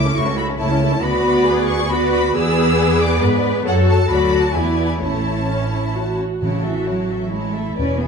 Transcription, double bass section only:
0, 0, Header, 1, 2, 480
1, 0, Start_track
1, 0, Key_signature, 3, "major"
1, 0, Tempo, 430725
1, 1133, Time_signature, 3, 2, 24, 8
1, 1615, Tempo, 443131
1, 4975, Tempo, 465477
1, 7375, Tempo, 448766
1, 8656, End_track
2, 0, Start_track
2, 0, Title_t, "Double bass section"
2, 0, Program_c, 0, 48
2, 0, Note_on_c, 0, 37, 62
2, 118, Note_off_c, 0, 37, 0
2, 172, Note_on_c, 0, 37, 65
2, 597, Note_off_c, 0, 37, 0
2, 660, Note_on_c, 0, 37, 66
2, 1079, Note_off_c, 0, 37, 0
2, 1138, Note_on_c, 0, 38, 65
2, 2549, Note_off_c, 0, 38, 0
2, 2588, Note_on_c, 0, 40, 68
2, 3517, Note_off_c, 0, 40, 0
2, 3539, Note_on_c, 0, 44, 69
2, 4013, Note_off_c, 0, 44, 0
2, 4026, Note_on_c, 0, 42, 67
2, 4489, Note_off_c, 0, 42, 0
2, 4492, Note_on_c, 0, 38, 64
2, 4966, Note_off_c, 0, 38, 0
2, 4978, Note_on_c, 0, 40, 60
2, 5451, Note_on_c, 0, 33, 53
2, 5456, Note_off_c, 0, 40, 0
2, 6686, Note_off_c, 0, 33, 0
2, 6894, Note_on_c, 0, 33, 37
2, 8291, Note_off_c, 0, 33, 0
2, 8337, Note_on_c, 0, 28, 38
2, 8656, Note_off_c, 0, 28, 0
2, 8656, End_track
0, 0, End_of_file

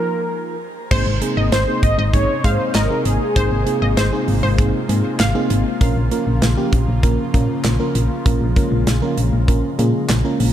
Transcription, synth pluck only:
0, 0, Header, 1, 2, 480
1, 0, Start_track
1, 0, Tempo, 612245
1, 715, Time_signature, 4, 2, 24, 8
1, 8255, End_track
2, 0, Start_track
2, 0, Title_t, "Synth pluck"
2, 0, Program_c, 0, 84
2, 714, Note_on_c, 0, 72, 112
2, 856, Note_off_c, 0, 72, 0
2, 1075, Note_on_c, 0, 75, 76
2, 1146, Note_off_c, 0, 75, 0
2, 1196, Note_on_c, 0, 72, 89
2, 1267, Note_off_c, 0, 72, 0
2, 1557, Note_on_c, 0, 75, 83
2, 1698, Note_off_c, 0, 75, 0
2, 1917, Note_on_c, 0, 77, 85
2, 1987, Note_off_c, 0, 77, 0
2, 2156, Note_on_c, 0, 75, 78
2, 2494, Note_off_c, 0, 75, 0
2, 2635, Note_on_c, 0, 72, 100
2, 2777, Note_off_c, 0, 72, 0
2, 2995, Note_on_c, 0, 75, 74
2, 3066, Note_off_c, 0, 75, 0
2, 3114, Note_on_c, 0, 72, 84
2, 3185, Note_off_c, 0, 72, 0
2, 3474, Note_on_c, 0, 72, 75
2, 3813, Note_off_c, 0, 72, 0
2, 4074, Note_on_c, 0, 77, 85
2, 4413, Note_off_c, 0, 77, 0
2, 8255, End_track
0, 0, End_of_file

